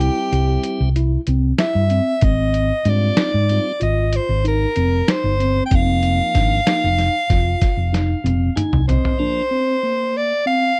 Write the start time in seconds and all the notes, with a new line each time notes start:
Already playing: E4 G4
0.00 G3 C4 E4, closed hi-hat
0.32 C2 G4, closed hi-hat
0.64 closed hi-hat
0.81 C2
0.96 E4, closed hi-hat
1.27 C2 C4, closed hi-hat
1.58 E4 E5, snare, closed hi-hat
1.75 G2
1.90 C4, closed hi-hat
2.21 G#1 C4 D#5, kick, closed hi-hat
2.54 closed hi-hat
2.85 G#2 G3 C4 D4 F4 D5, closed hi-hat
3.17 D#4, snare, closed hi-hat
3.34 G#2
3.49 G3 C4 F4, closed hi-hat
3.80 G#1 F4 D#5, closed hi-hat
4.13 C5, closed hi-hat
4.29 G#1
4.45 D#4 A#4, closed hi-hat
4.76 F1 C4, closed hi-hat
5.08 D#4 C5, snare, closed hi-hat
5.24 G1
5.40 C4, closed hi-hat
5.66 G5
5.71 F1 F3 A#3 C4 D#4, kick, closed hi-hat
5.75 F5
6.03 closed hi-hat
6.34 G#1 D4, kick, snare, closed hi-hat
6.66 F3 A#3 D#4, snare, closed hi-hat
6.84 F1
6.98 snare, closed hi-hat
7.30 F1 F4, kick, snare, closed hi-hat
7.62 kick, snare, closed hi-hat
7.77 F1
7.93 D#4, snare, closed hi-hat
8.24 F1 C4, closed hi-hat, high tom
8.56 D#4 G#5, closed hi-hat, mid tom
8.73 C2, mid tom
8.88 C4 C5 D#5, closed hi-hat, floor tom
9.05 floor tom
9.19 F3 A#3 D4
9.51 C4
9.83 A#3
10.17 D5
10.46 C4 F5